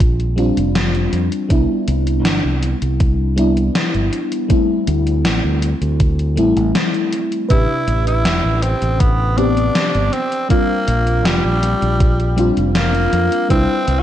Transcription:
Already playing: fingered electric bass A#1, fm electric piano G3 C4 D4 F4
0.00 kick, closed hi-hat
0.20 closed hi-hat
0.36 fm electric piano G3 C4 D4 F4, closed hi-hat
0.57 fingered electric bass F1, closed hi-hat
0.75 snare, closed hi-hat
0.95 closed hi-hat
1.12 fingered electric bass F2, closed hi-hat
1.32 closed hi-hat
1.49 fingered electric bass C2, fm electric piano G3 B3 D4 E4, kick, closed hi-hat
1.88 fingered electric bass C2, closed hi-hat
2.07 closed hi-hat
2.25 fingered electric bass G1, snare, closed hi-hat
2.44 fingered electric bass C2
2.63 closed hi-hat
2.82 fingered electric bass C2, closed hi-hat
3.00 kick, closed hi-hat
3.36 fm electric piano G3 B3 D4 E4, closed hi-hat
3.57 closed hi-hat
3.75 snare, closed hi-hat
3.94 fingered electric bass G1, closed hi-hat
4.13 closed hi-hat
4.32 closed hi-hat
4.49 fm electric piano G3 A3 C4 E4, kick, closed hi-hat
4.88 fingered electric bass D2, closed hi-hat
5.07 closed hi-hat
5.25 fingered electric bass A1, snare, closed hi-hat
5.44 fingered electric bass D2
5.63 closed hi-hat
5.82 fingered electric bass D2, closed hi-hat
6.00 kick, closed hi-hat
6.19 closed hi-hat
6.36 fingered electric bass A1, fm electric piano G3 A3 C4 E4, closed hi-hat
6.57 fingered electric bass A1, closed hi-hat
6.75 snare, closed hi-hat
6.94 closed hi-hat
7.13 closed hi-hat
7.32 closed hi-hat
7.49 fingered electric bass A1, fm electric piano C3 D4 G4 B4, tenor saxophone E4, kick, closed hi-hat
7.88 fingered electric bass A1, closed hi-hat
8.07 tenor saxophone E4, closed hi-hat
8.25 fingered electric bass E1, snare, closed hi-hat
8.44 fingered electric bass A1
8.63 tenor saxophone C4, closed hi-hat
8.82 fingered electric bass A1, closed hi-hat
9.00 tenor saxophone B3, kick, closed hi-hat
9.37 fm electric piano B3 C4 D4 G4, tenor saxophone D4, closed hi-hat
9.57 closed hi-hat
9.75 snare, closed hi-hat
9.94 fingered electric bass G1, closed hi-hat
10.13 tenor saxophone C4, closed hi-hat
10.32 closed hi-hat
10.49 fm electric piano G3 C4 D4 F4, tenor saxophone A#3, kick, closed hi-hat
10.88 fingered electric bass A#1, closed hi-hat
11.07 closed hi-hat
11.25 fingered electric bass F1, tenor saxophone G3, snare, closed hi-hat
11.44 fingered electric bass A#1
11.63 closed hi-hat
11.82 fingered electric bass A#1, closed hi-hat
12.00 kick, closed hi-hat
12.20 closed hi-hat
12.36 fm electric piano G3 C4 D4 F4, closed hi-hat
12.57 fingered electric bass F1, closed hi-hat
12.75 tenor saxophone A#3, snare, closed hi-hat
12.95 closed hi-hat
13.13 fingered electric bass F2, closed hi-hat
13.32 closed hi-hat
13.48 fingered electric bass C2, fm electric piano G3 D4 E4 B4, tenor saxophone C4, kick, closed hi-hat
13.88 fingered electric bass C2, closed hi-hat
14.00 tenor saxophone F#4

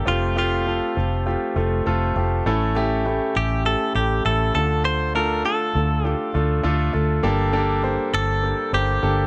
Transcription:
0.06 fingered electric bass F1, grand piano A3 C4 F4 G4, clean electric guitar F4
0.36 grand piano A3 C4 F4 G4, clean electric guitar F4
0.66 grand piano A3 C4 F4 A4
0.96 fingered electric bass F1, grand piano A3 C4 F4 A4
1.26 grand piano A3 C4 F4 G4
1.56 fingered electric bass F1, grand piano A3 C4 F4 A4
1.86 fingered electric bass F1, grand piano A3 C4 F4 A4
2.16 fingered electric bass F1, grand piano A3 C4 F4 G4
2.46 fingered electric bass A1, grand piano A2 A3 C#4 E4 A4
2.75 grand piano A3 C#4 E4 G4
3.06 grand piano A3 C#4 E4 G4
3.35 fingered electric bass A1, grand piano A3 C#4 E4 A4, clean electric guitar G4
3.65 grand piano A3 C#4 E4 G4, clean electric guitar A4
3.95 fingered electric bass A1, grand piano A3 C#4 E4 A4, clean electric guitar G4
4.25 fingered electric bass A1, grand piano A3 C#4 E4 A4, clean electric guitar A4
4.55 fingered electric bass D2, grand piano D3 A3 D4 F4 A4, clean electric guitar A4
4.85 clean electric guitar C5
5.15 grand piano A3 D4 F4 A4, clean electric guitar A#4
5.45 grand piano A3 D4 F4, clean electric guitar A4
5.75 fingered electric bass D2, grand piano A3 D4 F4 A4
6.04 grand piano A3 D4 F4 A4, clean electric guitar G4
6.34 fingered electric bass D2, grand piano A3 D4 F4 A4
6.64 fingered electric bass D2, grand piano A3 D4 F4 A4
6.93 fingered electric bass D2, grand piano A3 D4 F4 A4
7.23 fingered electric bass G1, grand piano G2 A#3 D4 G4 A4
7.53 grand piano A#3 D4 G4 A4
7.83 grand piano A#3 D4 G4 C5
8.13 fingered electric bass G1, grand piano A#3 D4 G4, clean electric guitar A4
8.43 grand piano A#3 D4 G4 A4
8.73 fingered electric bass G1, grand piano A#3 D4 G4 C5, clean electric guitar G4
9.02 fingered electric bass G1, grand piano A#3 D4 G4 A4

